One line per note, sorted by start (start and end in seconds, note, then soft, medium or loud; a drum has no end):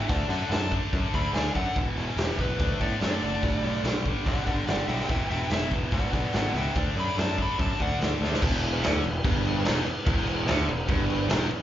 0.09 0.23 D2 medium
0.09 0.28 D3 medium
0.09 0.29 A3 medium
0.09 0.29 D4 medium
0.09 0.30 F#4 medium
0.09 0.29 F#5 medium
0.09 0.29 A5 medium
0.09 kick medium
0.09 open hi-hat medium
0.28 0.42 F#2 medium
0.28 0.49 D3 medium
0.28 0.50 A3 medium
0.28 0.50 D4 medium
0.28 0.50 F#4 medium
0.28 0.50 F#5 medium
0.28 0.51 A5 medium
0.28 open hi-hat soft
0.50 0.77 F#2 medium
0.50 0.70 D3 medium
0.50 0.71 A3 medium
0.50 0.71 D4 medium
0.50 0.71 F#4 medium
0.50 0.72 A5 medium
0.50 snare medium
0.50 open hi-hat medium
0.72 0.93 D3 medium
0.72 0.93 A3 medium
0.72 0.94 D4 medium
0.72 kick medium
0.72 open hi-hat soft
0.93 1.06 F#2 medium
0.93 1.13 D3 medium
0.93 1.14 A3 medium
0.93 1.14 D4 medium
0.93 kick loud
0.93 open hi-hat medium
1.14 1.27 D2 medium
1.14 1.33 D3 medium
1.14 1.34 A3 medium
1.14 1.34 D4 medium
1.14 1.33 G#4 medium
1.14 1.34 B5 medium
1.14 kick medium
1.14 open hi-hat soft
1.33 1.47 D2 medium
1.33 1.53 D3 medium
1.33 1.55 A3 medium
1.33 1.55 D4 medium
1.33 1.54 D4 medium
1.33 1.55 G#5 medium
1.33 snare loud
1.33 open hi-hat medium
1.55 1.68 F#2 medium
1.55 1.75 D3 medium
1.55 1.75 A3 medium
1.55 1.75 D4 medium
1.55 1.76 D4 medium
1.55 1.76 F#5 medium
1.55 kick medium
1.55 open hi-hat soft
1.75 1.90 E1 medium
1.75 1.96 E2 medium
1.75 1.96 B2 medium
1.75 1.97 E3 medium
1.75 2.60 B3 medium
1.75 2.60 E4 medium
1.75 2.60 G#4 medium
1.75 kick medium
1.75 open hi-hat medium
1.96 2.09 E1 medium
1.96 2.17 E2 medium
1.96 2.17 B2 medium
1.96 2.17 E3 medium
1.96 open hi-hat soft
2.17 2.31 E1 medium
2.17 2.38 E2 medium
2.17 2.38 B2 medium
2.17 2.39 E3 medium
2.17 2.38 E3 medium
2.17 2.39 G4 medium
2.17 snare medium
2.17 open hi-hat medium
2.38 2.52 E1 medium
2.38 2.59 E2 medium
2.38 2.59 B2 medium
2.38 2.59 E3 medium
2.38 2.78 F#3 medium
2.38 2.80 B4 medium
2.38 kick medium
2.38 open hi-hat soft
2.59 2.73 D2 medium
2.59 2.79 D3 medium
2.59 2.80 A3 medium
2.59 2.80 D4 loud
2.59 3.40 D4 medium
2.59 3.42 F#4 medium
2.59 3.42 A4 medium
2.59 kick loud
2.59 open hi-hat medium
2.80 2.93 A2 medium
2.80 2.99 D3 medium
2.80 2.99 A3 medium
2.80 3.00 B3 medium
2.80 3.00 D4 medium
2.80 3.01 D5 medium
2.80 kick medium
2.80 open hi-hat soft
3.00 3.15 F#2 medium
3.00 3.21 D3 medium
3.00 3.21 A3 medium
3.00 3.80 A3 medium
3.00 3.22 D4 medium
3.00 3.83 D5 medium
3.00 snare loud
3.00 open hi-hat medium
3.22 3.35 F#1 medium
3.22 3.41 D3 medium
3.22 3.41 A3 medium
3.22 3.42 D4 medium
3.22 open hi-hat soft
3.41 3.56 G1 medium
3.41 3.61 G2 medium
3.41 3.62 D3 medium
3.41 3.62 G3 medium
3.41 5.07 D4 medium
3.41 5.07 G4 medium
3.41 5.07 B4 medium
3.41 kick medium
3.41 open hi-hat medium
3.62 3.77 B1 medium
3.62 3.83 G2 medium
3.62 3.84 D3 medium
3.62 3.84 G3 medium
3.62 open hi-hat soft
3.84 4.10 B1 medium
3.84 4.04 G2 medium
3.84 4.04 D3 medium
3.84 4.05 G3 medium
3.84 snare loud
3.84 open hi-hat medium
4.05 4.26 G2 medium
4.05 4.26 D3 medium
4.05 4.26 G3 medium
4.05 kick medium
4.05 open hi-hat soft
4.26 4.39 B1 medium
4.26 4.44 G2 medium
4.26 4.45 D3 medium
4.26 4.45 G3 medium
4.26 4.46 D4 medium
4.26 4.45 D5 medium
4.26 4.46 F#5 medium
4.26 kick medium
4.26 open hi-hat medium
4.45 4.60 G1 medium
4.45 4.66 G2 medium
4.45 4.66 D3 medium
4.45 4.66 G3 medium
4.45 4.66 D4 medium
4.45 4.66 D5 medium
4.45 4.67 F#5 medium
4.45 kick medium
4.45 open hi-hat soft
4.67 4.81 G1 medium
4.67 4.85 G2 medium
4.67 4.86 D3 medium
4.67 4.86 G3 medium
4.67 4.87 D4 medium
4.67 4.87 D5 medium
4.67 4.89 F#5 medium
4.67 snare loud
4.67 open hi-hat medium
4.86 5.02 B1 medium
4.86 5.07 G2 medium
4.86 5.07 D3 medium
4.86 5.08 G3 medium
4.86 5.08 E4 medium
4.86 5.08 E5 medium
4.86 5.09 G5 medium
4.86 open hi-hat soft
5.00 snare soft
5.07 5.22 E1 medium
5.07 5.28 E2 medium
5.07 5.28 B2 medium
5.07 5.29 E3 medium
5.07 6.74 E4 medium
5.07 5.30 E4 medium
5.07 6.74 G#4 medium
5.07 6.74 B4 medium
5.07 5.29 E5 medium
5.07 5.31 G5 medium
5.07 kick medium
5.07 open hi-hat medium
5.29 5.43 E1 medium
5.29 5.49 E2 medium
5.29 5.49 B2 medium
5.29 5.49 E3 medium
5.29 5.50 D4 medium
5.29 5.49 E5 medium
5.29 5.51 G5 medium
5.29 open hi-hat soft
5.50 5.64 E1 medium
5.50 5.69 E2 medium
5.50 5.70 B2 medium
5.50 5.70 E3 medium
5.50 5.71 B3 medium
5.50 5.71 E5 medium
5.50 snare loud
5.50 open hi-hat medium
5.71 5.85 E1 medium
5.71 5.91 E2 medium
5.71 5.91 B2 medium
5.71 5.92 E3 loud
5.71 kick medium
5.71 open hi-hat soft
5.91 6.05 G#1 medium
5.91 6.10 E2 medium
5.91 6.11 B2 medium
5.91 6.12 E3 medium
5.91 6.13 B3 medium
5.91 6.13 D5 medium
5.91 6.13 F#5 medium
5.91 kick loud
5.91 open hi-hat medium
6.12 6.26 B1 medium
6.12 6.32 E2 medium
6.12 6.33 B2 medium
6.12 6.33 E3 medium
6.12 6.33 D4 medium
6.12 6.33 D5 medium
6.12 6.35 F#5 medium
6.12 kick medium
6.12 open hi-hat soft
6.33 6.47 G#1 medium
6.33 6.53 E2 medium
6.33 6.54 B2 medium
6.33 6.54 E3 medium
6.33 6.55 B3 medium
6.33 6.55 D5 medium
6.33 6.56 F#5 medium
6.33 snare loud
6.33 open hi-hat medium
6.54 6.67 C#2 medium
6.54 6.74 E2 medium
6.54 6.75 B2 medium
6.54 6.75 E3 medium
6.54 6.75 E5 medium
6.54 6.77 G5 medium
6.54 open hi-hat soft
6.58 6.76 D4 medium
6.75 6.89 D2 medium
6.75 6.95 D3 medium
6.75 6.95 A3 medium
6.75 8.17 D4 medium
6.75 6.96 D4 medium
6.75 8.41 F#4 medium
6.75 8.28 A4 medium
6.75 kick loud
6.75 open hi-hat medium
6.96 7.09 F#2 medium
6.96 7.15 D3 medium
6.96 7.15 A3 medium
6.96 7.15 D4 medium
6.96 7.17 G#4 medium
6.96 7.18 B5 medium
6.96 open hi-hat soft
7.16 7.44 F#2 medium
7.16 7.36 D3 medium
7.16 7.37 A3 medium
7.16 7.37 D4 medium
7.16 7.36 F#4 medium
7.16 7.39 A5 medium
7.16 snare loud
7.16 open hi-hat medium
7.37 7.57 D3 medium
7.37 7.57 A3 medium
7.37 7.57 D4 loud
7.37 7.57 G#4 medium
7.37 kick medium
7.37 open hi-hat soft
7.42 7.60 B5 medium
7.58 7.72 F#2 medium
7.58 7.78 D3 medium
7.58 7.78 A3 medium
7.58 7.79 D4 medium
7.58 7.78 F#4 medium
7.58 7.80 A5 medium
7.58 kick loud
7.58 open hi-hat medium
7.79 7.93 D2 medium
7.79 7.99 D3 medium
7.79 7.99 A3 medium
7.79 7.99 D4 medium
7.79 8.01 F#5 medium
7.79 kick medium
7.79 open hi-hat soft
7.99 8.12 D2 medium
7.99 8.20 D3 medium
7.99 8.20 A3 medium
7.99 8.21 D4 medium
7.99 snare loud
7.99 open hi-hat medium
8.10 8.31 A3 medium
8.10 8.32 B3 medium
8.16 8.34 C4 medium
8.16 8.35 D4 medium
8.21 8.34 D2 medium
8.21 8.40 D3 medium
8.21 8.41 A3 medium
8.21 8.41 D4 medium
8.21 8.36 E4 medium
8.21 snare soft
8.25 8.38 F4 medium
8.25 8.39 G4 medium
8.30 8.40 A4 medium
8.30 8.42 B4 medium
8.34 8.44 C5 medium
8.34 snare medium
8.39 8.80 E1 medium
8.39 8.82 E2 loud
8.39 11.62 B3 medium
8.39 11.62 E4 medium
8.39 11.62 G#4 medium
8.39 8.45 D5 medium
8.39 kick loud
8.39 crash loud
8.39 crash medium
8.63 crash medium
8.83 9.02 D2 medium
8.83 9.03 D3 loud
8.83 snare loud
8.83 crash medium
9.04 9.23 E1 medium
9.04 9.20 E2 medium
9.04 crash medium
9.24 9.62 G1 medium
9.24 9.64 G2 loud
9.24 kick loud
9.24 crash medium
9.45 crash medium
9.65 9.84 E1 loud
9.65 9.85 E2 loud
9.65 snare loud
9.65 crash medium
9.85 muted picked electric bass stroke soft
9.85 muted distorted electric guitar stroke medium
9.85 crash medium
10.06 10.45 E1 loud
10.06 10.47 E2 loud
10.06 kick loud
10.06 crash medium
10.27 crash medium
10.46 10.66 D2 loud
10.46 10.67 D3 loud
10.46 snare loud
10.46 crash medium
10.67 10.86 E1 medium
10.67 10.85 E2 medium
10.67 crash medium
10.88 11.27 G1 loud
10.88 11.28 G2 loud
10.88 kick loud
10.88 crash medium
11.10 crash medium
11.29 11.48 E1 loud
11.29 11.48 E2 loud
11.29 snare loud
11.29 crash medium
11.41 snare soft
11.49 muted distorted electric guitar stroke medium
11.49 muted picked electric bass stroke soft
11.49 crash medium